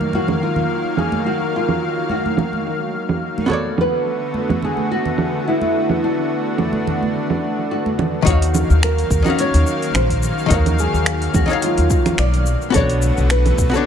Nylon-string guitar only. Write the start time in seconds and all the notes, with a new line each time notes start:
Already playing: A#4
0.15 F#4
0.43 F4
0.98 G#4
1.26 F#4
1.56 F4
2.11 F#4
3.81 B4
4.64 G#4
4.91 F#4
5.48 E4
6.04 D4
7.71 F#4
8.27 F#4
8.84 A#4
9.40 C#5
9.96 C5
10.52 A#4
10.80 G#4
11.35 F#4
11.64 F4
12.19 D5
12.75 C#5
13.31 B4